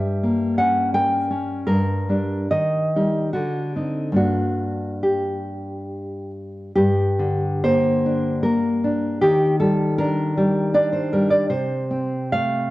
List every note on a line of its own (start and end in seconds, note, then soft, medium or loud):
0.00 1.63 G2 medium
0.00 0.94 G3 soft
0.00 0.55 E5 medium
0.23 1.30 A#3 soft
0.58 1.29 C#4 medium
0.58 0.93 F#5 medium
0.94 1.66 A#4 medium
0.94 1.64 G5 medium
1.31 1.67 C#4 soft
1.67 2.49 G2 medium
1.67 2.48 A#4 medium
2.09 2.48 G3 soft
2.09 2.48 D4 soft
2.51 3.31 D#3 medium
2.51 3.30 D#5 medium
2.96 3.31 G3 soft
2.96 3.31 D#4 medium
3.33 4.15 D3 medium
3.33 3.76 F#4 medium
3.76 4.13 C4 soft
3.76 4.14 D#4 soft
4.12 6.70 G2 medium
4.12 6.71 A#3 soft
4.12 6.72 D4 soft
4.16 5.00 F#4 medium
5.03 6.30 G4 medium
6.75 9.19 G2 medium
6.75 7.60 G4 medium
7.19 8.45 D3 medium
7.64 8.43 A#3 medium
7.64 8.42 C5 loud
8.06 8.83 D4 medium
8.43 9.23 A#3 medium
8.43 9.19 A#4 medium
8.84 9.23 D4 medium
9.22 11.46 D#3 medium
9.22 9.59 G4 medium
9.60 10.36 G3 medium
9.60 9.98 A4 medium
9.98 10.73 D4 medium
9.98 10.71 A#4 medium
10.37 11.12 G3 medium
10.74 11.49 D4 medium
10.74 10.92 D5 loud
10.92 11.12 C5 medium
11.13 11.51 G3 medium
11.13 11.31 A#4 medium
11.30 11.50 D5 medium
11.50 12.71 C3 medium
11.50 12.30 C5 medium
11.91 12.71 C4 medium
12.32 12.71 A3 medium
12.32 12.71 F5 loud